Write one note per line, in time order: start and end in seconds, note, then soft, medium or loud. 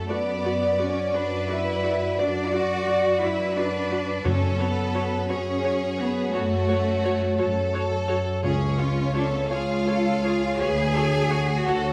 0.00 0.10 A4 medium
0.00 0.11 A4 soft
0.09 1.02 F#2 medium
0.09 0.80 B3 medium
0.09 0.17 F#4 soft
0.09 4.09 F#4 medium
0.09 0.80 B4 medium
0.09 0.17 D5 soft
0.09 4.09 D5 medium
0.09 1.12 D5 medium
0.44 0.52 F#4 soft
0.44 0.52 D5 soft
0.78 1.15 C#4 medium
0.78 0.86 F#4 soft
0.78 1.15 C#5 medium
0.78 0.86 D5 soft
1.13 2.06 F#2 medium
1.13 1.50 D4 medium
1.13 1.22 F#4 soft
1.13 2.18 B4 medium
1.13 1.21 D5 soft
1.13 1.50 D5 medium
1.49 2.19 E4 medium
1.49 1.57 F#4 soft
1.49 1.57 D5 soft
1.49 2.19 E5 medium
1.83 1.91 F#4 soft
1.83 1.92 D5 soft
2.18 3.10 F#2 medium
2.18 2.53 D4 medium
2.18 2.26 F#4 soft
2.18 2.53 D5 medium
2.18 3.22 D5 medium
2.18 2.26 D5 soft
2.52 2.60 F#4 soft
2.52 3.23 F#4 medium
2.52 2.61 D5 soft
2.52 3.21 F#5 medium
2.87 2.95 F#4 soft
2.87 2.95 D5 soft
3.22 4.13 F#2 medium
3.22 3.57 E4 medium
3.22 3.30 F#4 soft
3.22 4.26 B4 medium
3.22 3.30 D5 medium
3.22 3.57 E5 medium
3.56 4.26 D4 medium
3.56 3.65 F#4 soft
3.56 4.25 D5 medium
3.56 3.65 D5 soft
3.91 3.99 F#4 medium
3.91 3.99 D5 soft
4.24 5.25 F#2 medium
4.24 5.17 F#2 medium
4.24 4.59 C#4 medium
4.24 4.32 F#4 medium
4.24 8.40 F#4 medium
4.24 5.30 A4 medium
4.24 4.33 C#5 medium
4.24 4.60 C#5 medium
4.24 8.41 C#5 medium
4.59 5.29 B3 medium
4.59 4.67 F#4 soft
4.59 5.30 B4 medium
4.59 4.67 C#5 soft
4.94 5.02 F#4 soft
4.94 5.02 C#5 soft
5.29 6.21 F#2 medium
5.29 5.97 C#4 medium
5.29 5.37 F#4 medium
5.29 6.32 G#4 medium
5.29 5.99 C#5 medium
5.29 5.37 C#5 medium
5.64 5.72 F#4 soft
5.64 5.72 C#5 soft
5.98 6.34 B3 medium
5.98 6.06 F#4 medium
5.98 6.34 B4 medium
5.98 6.07 C#5 soft
6.33 7.27 F#2 medium
6.33 7.74 A3 medium
6.33 6.41 F#4 medium
6.33 7.39 F#4 medium
6.33 7.70 A4 medium
6.33 6.42 C#5 medium
6.68 6.76 F#4 soft
6.68 6.76 C#5 soft
7.04 7.12 F#4 medium
7.04 7.12 C#5 medium
7.37 8.31 F#2 medium
7.37 7.46 F#4 soft
7.37 8.41 A4 medium
7.37 7.46 C#5 soft
7.73 7.81 F#4 soft
7.73 7.81 C#5 soft
8.08 8.16 F#4 medium
8.08 8.16 C#5 soft
8.43 9.37 C#2 medium
8.43 9.46 C#3 medium
8.43 9.11 C#4 medium
8.43 8.51 F4 medium
8.43 10.56 F4 medium
8.43 8.78 G#4 medium
8.43 9.46 C#5 medium
8.43 8.52 C#5 medium
8.43 11.93 C#5 medium
8.78 8.86 F4 medium
8.78 9.14 F4 medium
8.78 8.86 C#5 soft
9.14 9.24 D4 medium
9.14 9.22 F4 medium
9.14 9.50 A4 medium
9.14 9.22 C#5 medium
9.25 9.33 C#4 medium
9.33 9.41 B3 medium
9.42 9.50 C#4 medium
9.50 10.47 C#2 medium
9.50 9.58 F4 medium
9.50 10.57 F4 medium
9.50 9.87 G#4 medium
9.50 9.58 C#5 medium
9.50 10.59 F5 medium
9.86 9.95 F4 soft
9.86 10.23 A4 medium
9.86 9.95 C#5 soft
10.23 10.31 F4 soft
10.23 10.59 G#4 medium
10.23 10.31 C#5 soft
10.58 11.53 D2 medium
10.58 11.93 F#4 medium
10.58 10.68 F#4 soft
10.58 11.66 G#4 loud
10.58 10.93 B4 medium
10.58 10.67 C#5 soft
10.58 11.65 G#5 medium
10.94 11.02 F#4 soft
10.94 11.30 A4 medium
10.94 11.02 C#5 soft
11.30 11.38 F#4 medium
11.30 11.66 F#4 medium
11.30 11.38 C#5 medium
11.66 11.93 D2 medium
11.66 11.93 F#4 medium
11.66 11.75 F#4 medium
11.66 11.93 A4 medium
11.66 11.75 C#5 medium
11.66 11.93 F#5 medium